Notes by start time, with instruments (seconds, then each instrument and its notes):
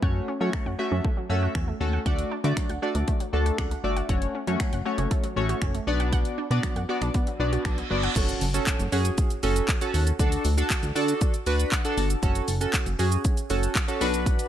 0.02 analog synth bass F#2, synth keys A3 C#4 F#4 C#5, synth arpeggio sound F#5, kick
0.28 synth arpeggio sound C#4
0.40 analog synth bass F#3, synth keys A3 C#4 F#4 C#5, synth arpeggio sound A3
0.53 synth arpeggio sound F#3, finger snap, kick
0.66 analog synth bass F#2, synth arpeggio sound F#5
0.78 synth keys A3 C#4 F#4 E5, synth arpeggio sound F#4
0.92 analog synth bass F#2, synth arpeggio sound C#4
1.04 synth arpeggio sound A3, kick
1.17 synth arpeggio sound F#3
1.29 analog synth bass F#2, synth keys A3 C#4 F#4 E5
1.43 synth arpeggio sound F#4
1.55 analog synth bass E2, synth arpeggio sound C#4, finger snap, kick
1.68 synth arpeggio sound A3
1.80 analog synth bass D#2, synth keys A3 C#4 F#4 A4
1.93 synth arpeggio sound F#5
2.06 analog synth bass D2, synth keys A3 D4 F#4 D5, synth arpeggio sound F#5, kick, closed hi-hat
2.19 closed hi-hat
2.31 synth arpeggio sound D4
2.44 analog synth bass D3, synth keys A3 D4 F#4 D5, synth arpeggio sound A3, closed hi-hat
2.57 synth arpeggio sound F#3, finger snap, kick, closed hi-hat
2.69 analog synth bass D2, synth arpeggio sound F#5, closed hi-hat
2.82 synth keys A3 D4 F#4 D5, synth arpeggio sound F#4
2.95 analog synth bass D2, synth arpeggio sound D4, closed hi-hat
3.08 synth arpeggio sound A3, kick, closed hi-hat
3.20 synth arpeggio sound F#3, closed hi-hat
3.33 analog synth bass D2, synth keys A3 D4 F#4 A4 A5
3.46 synth arpeggio sound F#4, closed hi-hat
3.58 analog synth bass C#2, synth arpeggio sound D4, synth keys F#5, finger snap, kick, closed hi-hat
3.71 synth arpeggio sound A3, closed hi-hat
3.84 analog synth bass G1, synth keys A3 D4 F#4 D5 E5
3.96 synth arpeggio sound F#5, closed hi-hat
4.09 analog synth bass F#1, synth keys A3 C#4 F#4 C#5, synth arpeggio sound F#5, kick, closed hi-hat
4.22 closed hi-hat
4.35 synth arpeggio sound C#4
4.47 analog synth bass F#2, synth keys A3 C#4 F#4 C#5, synth arpeggio sound A3, closed hi-hat
4.60 synth arpeggio sound F#3, finger snap, kick, closed hi-hat
4.73 analog synth bass F#1, synth arpeggio sound F#5, closed hi-hat
4.85 synth keys A3 C#4 F#4 C#5, synth arpeggio sound F#4
4.98 analog synth bass F#1, synth arpeggio sound C#4, closed hi-hat
5.11 synth arpeggio sound A3, kick, closed hi-hat
5.24 synth arpeggio sound F#3, closed hi-hat
5.36 analog synth bass A1, synth keys A3 C#4 F#4 C#5
5.49 synth arpeggio sound F#4, closed hi-hat
5.62 analog synth bass F#1, synth arpeggio sound C#4, finger snap, kick, closed hi-hat
5.74 synth arpeggio sound A3, closed hi-hat
5.87 analog synth bass B1, synth keys B3 D4 F#4 D5
6.00 synth arpeggio sound F#5, closed hi-hat
6.13 synth arpeggio sound F#5, kick, closed hi-hat
6.25 closed hi-hat
6.38 synth arpeggio sound D4
6.51 analog synth bass B2, synth keys B3 D4 F#4 D5, synth arpeggio sound B3, closed hi-hat
6.63 synth arpeggio sound F#3, finger snap, kick, closed hi-hat
6.76 analog synth bass F#2, synth arpeggio sound F#5, closed hi-hat
6.89 synth keys B3 D4 F#4 D5, synth arpeggio sound F#4
7.02 analog synth bass B1, synth arpeggio sound D4, finger snap, closed hi-hat
7.14 synth arpeggio sound B3, kick, closed hi-hat, reverse cymbal
7.27 synth arpeggio sound F#3, closed hi-hat
7.40 analog synth bass B1, synth keys B3 D4 F#4 D5
7.53 synth arpeggio sound F#4, closed hi-hat
7.65 analog synth bass B1, synth arpeggio sound D4, finger snap, kick, closed hi-hat
7.78 synth arpeggio sound B3, closed hi-hat
7.90 analog synth bass G1, synth keys B3 D4 F#4 D5
8.03 synth arpeggio sound F#5, closed hi-hat
8.16 analog synth bass F#1, synth keys C#4 F#4 A4, kick, closed hi-hat, crash, impact, shaker
8.29 closed hi-hat, shaker
8.41 analog synth bass F#1, open hi-hat, shaker
8.54 synth keys C#4 F#4 A4, closed hi-hat, shaker
8.67 kick, clap, closed hi-hat, shaker
8.80 analog synth bass F#1, closed hi-hat, shaker
8.92 analog synth bass F#2, synth keys C#4 F#4 G#4, open hi-hat, shaker
9.05 closed hi-hat, shaker
9.18 kick, closed hi-hat, shaker
9.30 closed hi-hat, shaker
9.43 analog synth bass F#1, synth keys C#4 F#4 A4, open hi-hat, shaker
9.56 closed hi-hat, shaker
9.68 kick, clap, closed hi-hat, shaker
9.81 synth keys C#4 F#4 A4, closed hi-hat, shaker
9.94 analog synth bass D#2, open hi-hat, shaker
10.07 closed hi-hat, shaker
10.19 analog synth bass D2, synth keys D4 F#4 A4, kick, closed hi-hat, shaker
10.32 closed hi-hat, shaker
10.45 analog synth bass D2, open hi-hat, shaker
10.57 synth keys D4 F#4 A4, closed hi-hat, shaker
10.70 kick, clap, closed hi-hat, shaker
10.83 analog synth bass D2, closed hi-hat, shaker
10.95 analog synth bass D3, synth keys D4 F#4 A4, open hi-hat, shaker
11.08 closed hi-hat, shaker
11.21 kick, closed hi-hat, shaker
11.34 closed hi-hat, shaker
11.46 analog synth bass D2, synth keys D4 F#4 B4, open hi-hat, shaker
11.60 closed hi-hat, shaker
11.72 synth keys F#5, kick, clap, closed hi-hat, shaker
11.84 synth keys D4 F#4 A4, closed hi-hat, shaker
11.97 analog synth bass G1, synth keys A5, open hi-hat, shaker
12.10 closed hi-hat, shaker
12.23 analog synth bass F#1, synth keys C#4 F#4 A4, kick, closed hi-hat, shaker
12.35 closed hi-hat, shaker
12.48 analog synth bass F#1, open hi-hat, shaker
12.61 synth keys C#4 F#4 A4, closed hi-hat, shaker
12.74 kick, clap, closed hi-hat, shaker
12.86 analog synth bass F#1, closed hi-hat, shaker
12.99 analog synth bass F#2, synth keys C#4 F#4 G#4, open hi-hat, shaker
13.12 closed hi-hat, shaker
13.25 kick, closed hi-hat, shaker
13.37 closed hi-hat, shaker
13.50 analog synth bass F#1, synth keys C#4 F#4 A4, open hi-hat, shaker
13.63 closed hi-hat, shaker
13.75 kick, clap, closed hi-hat, shaker
13.88 synth keys C#4 F#4 A4, closed hi-hat, shaker
14.01 analog synth bass B1, synth keys D4 F#4 B4, open hi-hat, shaker
14.14 closed hi-hat, shaker
14.26 kick, closed hi-hat, shaker
14.39 closed hi-hat, shaker